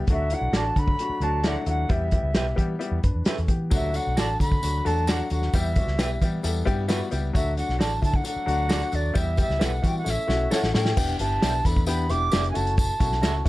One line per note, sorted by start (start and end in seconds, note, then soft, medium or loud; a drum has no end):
0.07 0.33 D2 loud
0.07 0.26 F#3 medium
0.07 0.26 A3 medium
0.07 0.26 D4 medium
0.07 0.27 F#4 medium
0.07 kick loud
0.07 closed hi-hat medium
0.12 0.35 E5 medium
0.30 0.48 F#3 medium
0.30 0.49 A3 medium
0.30 0.49 D4 medium
0.30 0.49 E4 medium
0.30 0.58 F#5 medium
0.30 closed hi-hat medium
0.41 0.50 B1 medium
0.53 0.70 A1 medium
0.53 0.71 F#3 medium
0.53 0.71 A3 medium
0.53 0.72 D4 medium
0.53 0.63 F#4 medium
0.53 0.72 F#4 medium
0.53 0.63 A4 medium
0.53 0.64 D5 medium
0.53 0.80 A5 medium
0.53 snare loud
0.53 closed hi-hat medium
0.76 0.93 D3 loud
0.76 0.94 F#3 medium
0.76 0.94 A3 medium
0.76 0.94 D4 medium
0.76 0.94 A4 medium
0.76 1.24 B5 loud
0.76 kick medium
0.76 closed hi-hat medium
0.88 kick medium
0.99 1.17 F#3 medium
0.99 1.17 A3 medium
0.99 1.17 D4 medium
0.99 1.17 F#4 medium
0.99 closed hi-hat medium
1.09 muted fingered electric bass stroke soft
1.20 1.55 D2 medium
1.20 1.39 F#3 medium
1.20 1.39 A3 medium
1.20 1.40 D4 medium
1.20 1.40 F#4 medium
1.20 1.48 A5 medium
1.20 closed hi-hat medium
1.44 1.62 F#3 medium
1.44 1.62 A3 medium
1.44 1.62 D4 medium
1.44 1.63 E4 medium
1.44 1.53 F#4 medium
1.44 1.54 A4 medium
1.44 1.54 D5 medium
1.44 1.68 F#5 medium
1.44 snare loud
1.44 closed hi-hat medium
1.66 1.84 D#2 medium
1.66 1.84 F#3 medium
1.66 1.84 A3 medium
1.66 1.84 D4 medium
1.66 1.84 E4 medium
1.66 1.93 F#5 medium
1.66 closed hi-hat medium
1.89 2.16 E2 medium
1.89 2.07 G3 medium
1.89 2.07 B3 medium
1.89 2.07 E4 medium
1.89 2.07 G4 medium
1.89 2.59 E5 medium
1.89 kick loud
1.89 closed hi-hat medium
2.11 2.30 G3 medium
2.11 2.30 B3 medium
2.11 2.30 E4 medium
2.11 2.30 G4 medium
2.11 kick medium
2.11 closed hi-hat medium
2.23 2.32 C#2 medium
2.34 2.52 B1 medium
2.34 2.52 G3 medium
2.34 2.52 B3 medium
2.34 2.52 E4 medium
2.34 2.44 G4 medium
2.34 2.52 G4 medium
2.34 2.45 B4 medium
2.34 2.45 E5 medium
2.34 snare loud
2.34 closed hi-hat medium
2.56 2.75 E3 medium
2.56 2.74 G3 medium
2.56 2.74 B3 medium
2.56 2.75 E4 medium
2.56 2.75 G4 medium
2.56 kick medium
2.56 closed hi-hat medium
2.79 2.97 G3 medium
2.79 2.97 B3 medium
2.79 2.98 E4 medium
2.79 2.98 G4 medium
2.79 closed hi-hat medium
2.91 3.00 E2 medium
3.03 3.12 F#2 medium
3.03 3.25 D4 soft
3.03 3.25 B4 medium
3.03 kick medium
3.03 closed hi-hat medium
3.15 3.23 E2 medium
3.25 3.48 C#4 soft
3.25 3.36 G4 medium
3.25 3.48 A4 medium
3.25 3.36 B4 medium
3.25 3.37 E5 medium
3.25 snare loud
3.25 closed hi-hat medium
3.38 3.47 E2 medium
3.38 closed hi-hat soft
3.48 3.74 E3 medium
3.48 3.92 B3 soft
3.48 3.92 G4 medium
3.48 kick medium
3.48 closed hi-hat medium
3.71 3.98 D2 loud
3.71 3.88 F#3 medium
3.71 3.89 A3 medium
3.71 3.89 D4 medium
3.71 3.89 F#4 medium
3.71 kick loud
3.71 closed hi-hat medium
3.71 tambourine medium
3.75 3.97 E5 medium
3.93 4.11 F#3 medium
3.93 4.11 A3 medium
3.93 4.11 D4 medium
3.93 4.12 F#4 medium
3.93 4.19 F#5 medium
3.93 closed hi-hat medium
3.93 tambourine medium
4.07 4.15 B1 medium
4.16 4.35 A1 medium
4.16 4.34 F#3 medium
4.16 4.34 A3 medium
4.16 4.35 D4 medium
4.16 4.34 F#4 medium
4.16 4.26 F#4 medium
4.16 4.27 A4 medium
4.16 4.27 D5 medium
4.16 4.39 A5 medium
4.16 snare loud
4.16 closed hi-hat medium
4.16 tambourine medium
4.39 4.57 D3 medium
4.39 4.57 F#3 medium
4.39 4.57 A3 medium
4.39 4.57 D4 medium
4.39 4.57 A4 medium
4.39 4.87 B5 medium
4.39 kick medium
4.39 closed hi-hat medium
4.39 tambourine medium
4.52 kick medium
4.62 4.80 D2 medium
4.62 4.79 F#3 medium
4.62 4.80 A3 medium
4.62 4.80 D4 medium
4.62 4.80 F#4 medium
4.62 closed hi-hat medium
4.62 tambourine medium
4.85 5.20 E2 medium
4.85 5.02 F#3 medium
4.85 5.02 A3 medium
4.85 5.02 D4 medium
4.85 5.03 A4 medium
4.85 5.11 A5 medium
4.85 closed hi-hat medium
4.85 tambourine soft
5.07 5.25 F#3 medium
5.07 5.25 A3 medium
5.07 5.25 D4 medium
5.07 5.25 F#4 medium
5.07 5.17 F#4 medium
5.07 5.18 A4 medium
5.07 5.18 D5 medium
5.07 5.32 F#5 medium
5.07 snare loud
5.07 closed hi-hat medium
5.07 tambourine loud
5.30 5.48 D#2 medium
5.30 5.48 F#3 medium
5.30 5.48 A3 medium
5.30 5.48 D4 medium
5.30 5.49 F#4 medium
5.30 5.57 F#5 medium
5.30 closed hi-hat medium
5.30 tambourine soft
5.42 snare soft
5.53 5.79 E2 medium
5.53 5.71 G3 medium
5.53 5.71 B3 medium
5.53 5.71 E4 medium
5.53 5.71 G4 medium
5.53 6.22 E5 medium
5.53 kick loud
5.53 closed hi-hat medium
5.53 tambourine medium
5.76 5.94 G3 medium
5.76 5.94 B3 medium
5.76 5.94 E4 medium
5.76 5.94 F#4 medium
5.76 kick medium
5.76 closed hi-hat medium
5.76 tambourine medium
5.87 5.99 C#2 medium
5.87 snare soft
5.98 6.16 B1 medium
5.98 6.16 G3 medium
5.98 6.16 B3 medium
5.98 6.16 E4 medium
5.98 6.08 G4 medium
5.98 6.17 G4 medium
5.98 6.09 B4 medium
5.98 6.09 E5 medium
5.98 snare loud
5.98 closed hi-hat medium
5.98 tambourine medium
6.22 6.39 E3 medium
6.22 6.39 G3 medium
6.22 6.39 B3 medium
6.22 6.39 E4 medium
6.22 6.39 G4 medium
6.22 kick medium
6.22 closed hi-hat medium
6.22 tambourine soft
6.43 6.61 E2 medium
6.43 6.61 G3 medium
6.43 6.61 B3 medium
6.43 6.61 E4 medium
6.43 6.62 A4 medium
6.43 closed hi-hat medium
6.43 tambourine loud
6.65 7.01 G2 medium
6.65 6.83 G3 loud
6.65 6.83 B3 loud
6.65 6.84 E4 medium
6.65 6.84 G4 loud
6.65 kick medium
6.65 closed hi-hat medium
6.65 tambourine soft
6.88 7.06 G3 loud
6.88 7.06 B3 medium
6.88 7.06 E4 medium
6.88 7.07 F#4 loud
6.88 6.99 G4 medium
6.88 6.99 B4 medium
6.88 7.00 E5 medium
6.88 snare loud
6.88 closed hi-hat medium
6.88 tambourine medium
7.11 7.30 C#2 medium
7.11 7.29 G3 medium
7.11 7.29 B3 medium
7.11 7.29 E4 medium
7.11 7.29 G4 medium
7.11 closed hi-hat medium
7.11 tambourine soft
7.33 7.61 D2 medium
7.33 7.51 F#3 medium
7.33 7.52 A3 medium
7.33 7.51 D4 medium
7.33 7.52 F#4 medium
7.33 7.56 E5 medium
7.33 kick loud
7.33 closed hi-hat medium
7.33 tambourine medium
7.57 7.75 F#3 medium
7.57 7.75 A3 medium
7.57 7.75 D4 medium
7.57 7.75 F#4 medium
7.57 7.78 F#5 medium
7.57 closed hi-hat medium
7.57 tambourine medium
7.69 7.77 B1 medium
7.69 snare soft
7.78 7.97 A1 medium
7.78 7.97 F#3 medium
7.78 7.97 A3 medium
7.78 7.97 D4 medium
7.78 7.89 F#4 medium
7.78 7.97 F#4 medium
7.78 7.90 A4 medium
7.78 7.90 D5 medium
7.78 8.01 A5 medium
7.78 snare loud
7.78 closed hi-hat medium
7.78 tambourine medium
8.02 8.20 D3 loud
8.02 8.20 F#3 medium
8.02 8.20 A3 medium
8.02 8.20 D4 medium
8.02 8.20 E4 medium
8.02 8.17 A5 medium
8.02 kick medium
8.02 closed hi-hat medium
8.02 tambourine medium
8.14 8.26 F#5 medium
8.14 kick medium
8.24 8.42 F#3 medium
8.24 8.42 A3 medium
8.24 8.42 D4 medium
8.24 8.42 A4 medium
8.24 8.96 F#5 medium
8.24 closed hi-hat medium
8.24 tambourine medium
8.36 muted fingered electric bass stroke soft
8.46 8.82 D2 medium
8.46 8.64 F#3 medium
8.46 8.65 A3 medium
8.46 8.65 D4 medium
8.46 8.65 F#4 loud
8.46 closed hi-hat medium
8.46 tambourine soft
8.69 8.87 F#3 medium
8.69 8.88 A3 medium
8.69 8.88 D4 medium
8.69 8.79 F#4 medium
8.69 8.88 F#4 loud
8.69 8.80 A4 medium
8.69 8.81 D5 medium
8.69 snare loud
8.69 closed hi-hat medium
8.69 tambourine medium
8.82 closed hi-hat soft
8.92 9.10 D#2 medium
8.92 9.10 F#3 medium
8.92 9.10 A3 medium
8.92 9.10 D4 medium
8.92 9.10 F#4 medium
8.92 9.19 D5 medium
8.92 closed hi-hat medium
8.92 tambourine soft
9.14 9.42 E2 loud
9.14 9.32 G3 medium
9.14 9.32 B3 medium
9.14 9.33 E4 medium
9.14 9.33 G4 loud
9.14 kick loud
9.14 closed hi-hat medium
9.14 tambourine medium
9.18 9.40 E5 medium
9.37 9.55 G3 medium
9.37 9.56 B3 medium
9.37 9.56 E4 medium
9.37 9.56 G4 medium
9.37 9.65 E5 medium
9.37 kick medium
9.37 closed hi-hat medium
9.37 tambourine soft
9.50 9.58 C#2 medium
9.50 snare soft
9.59 9.78 B1 medium
9.59 9.78 G3 medium
9.59 9.78 B3 medium
9.59 9.78 E4 medium
9.59 9.70 G4 medium
9.59 9.78 A4 medium
9.59 9.71 B4 medium
9.59 9.71 E5 medium
9.59 snare loud
9.59 closed hi-hat medium
9.59 tambourine medium
9.64 9.89 F#5 medium
9.82 10.01 E3 loud
9.82 10.01 G3 medium
9.82 10.01 B3 medium
9.82 10.00 E4 medium
9.82 10.01 F#4 medium
9.82 kick medium
9.82 closed hi-hat medium
9.82 tambourine soft
9.87 9.97 G5 medium
9.98 10.11 F#5 medium
10.04 10.15 A1 medium
10.04 10.23 A3 medium
10.04 10.23 C#4 medium
10.04 10.23 E4 medium
10.04 10.23 A4 medium
10.04 snare soft
10.04 tambourine medium
10.10 10.53 E5 medium
10.18 muted fingered electric bass stroke soft
10.27 10.46 B1 medium
10.27 10.46 A3 medium
10.27 10.46 C#4 medium
10.27 10.46 E4 medium
10.27 10.46 F#4 loud
10.27 snare medium
10.27 tambourine soft
10.50 10.69 A3 medium
10.50 10.69 C#4 medium
10.50 10.69 E4 medium
10.50 10.61 A4 medium
10.50 10.69 A4 loud
10.50 10.62 C#5 medium
10.50 10.62 E5 medium
10.50 10.74 F#5 medium
10.50 snare medium
10.50 tambourine medium
10.63 10.72 A1 medium
10.63 snare medium
10.73 10.92 A2 medium
10.73 10.92 A3 medium
10.73 10.92 C#4 medium
10.73 10.91 E4 medium
10.73 10.92 A4 medium
10.73 11.17 G5 medium
10.73 snare medium
10.73 tambourine soft
10.85 snare medium
10.97 11.15 E1 loud
10.97 11.14 B3 medium
10.97 11.15 D4 medium
10.97 11.14 E4 medium
10.97 11.15 G4 loud
10.97 kick loud
10.97 crash medium
10.97 tambourine medium
11.19 11.37 G1 medium
11.19 11.37 B3 medium
11.19 11.37 D4 medium
11.19 11.38 E4 medium
11.19 11.38 G4 medium
11.19 11.67 A5 medium
11.19 closed hi-hat medium
11.19 tambourine medium
11.42 11.60 B1 medium
11.42 11.60 B3 medium
11.42 11.60 D4 medium
11.42 11.60 E4 medium
11.42 11.52 G4 medium
11.42 11.60 G4 medium
11.42 11.52 D5 medium
11.42 11.52 E5 medium
11.42 snare loud
11.42 closed hi-hat medium
11.42 tambourine medium
11.65 12.12 E2 loud
11.65 11.83 B3 medium
11.65 11.83 D4 medium
11.65 11.83 E4 medium
11.65 11.83 A4 medium
11.65 11.86 B5 medium
11.65 kick medium
11.65 closed hi-hat medium
11.65 tambourine medium
11.76 kick medium
11.87 12.05 B3 medium
11.87 12.05 D4 medium
11.87 12.05 E4 medium
11.87 12.05 G4 loud
11.87 12.12 B5 medium
11.87 closed hi-hat medium
11.87 tambourine loud
12.09 12.28 E1 medium
12.09 12.27 B3 medium
12.09 12.27 D4 medium
12.09 12.28 E4 medium
12.09 12.28 G4 medium
12.09 12.49 D6 loud
12.09 closed hi-hat medium
12.09 tambourine soft
12.32 12.51 F1 medium
12.32 12.50 B3 medium
12.32 12.50 D4 medium
12.32 12.50 E4 medium
12.32 12.42 G4 medium
12.32 12.50 G4 medium
12.32 12.43 D5 medium
12.32 12.43 E5 medium
12.32 snare loud
12.32 closed hi-hat medium
12.32 tambourine medium
12.44 closed hi-hat soft
12.50 12.91 A3 medium
12.50 12.91 C#4 medium
12.50 12.91 E4 medium
12.50 12.91 F#4 medium
12.50 12.57 G#5 medium
12.55 12.91 F#1 medium
12.55 12.77 A5 medium
12.55 closed hi-hat medium
12.55 tambourine medium
12.67 closed hi-hat medium
12.78 13.42 A5 medium
12.78 kick loud
12.78 closed hi-hat medium
12.78 tambourine loud
13.00 13.24 B1 medium
13.00 13.18 A3 medium
13.00 13.18 C#4 medium
13.00 13.18 E4 medium
13.00 13.18 F#4 medium
13.00 kick loud
13.00 closed hi-hat medium
13.00 tambourine medium
13.12 snare soft
13.21 13.41 C#2 medium
13.21 13.40 A3 medium
13.21 13.40 C#4 medium
13.21 13.40 E4 medium
13.21 13.40 F#4 medium
13.21 13.32 F#4 medium
13.21 13.33 A4 medium
13.21 13.34 E5 medium
13.21 snare loud
13.21 closed hi-hat medium
13.21 tambourine medium
13.45 13.49 A3 medium
13.45 13.49 C#4 medium
13.45 13.49 E4 medium
13.45 13.49 F#4 loud
13.45 kick medium